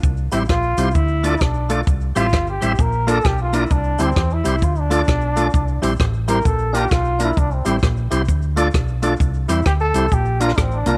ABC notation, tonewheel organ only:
X:1
M:4/4
L:1/8
Q:"Swing" 1/4=131
K:Cmix
V:1 name="Tonewheel organ"
z [EGc] [Gc] [EGc] z [FAd] z [FAd] | z [Gce] [ce] [Gce] z [FBd] z [FBd] | z [EGc] [Gc] [EGc] z [FAd] z [FAd] | z [EGc] [Gc] [EGc] z [DFB] z [DFB] |
z [EGc] [Gc] [EGc] z [FAd] z [FAd] | z [EGc] [Gc] [EGc] z [DFB] z [DFB] |]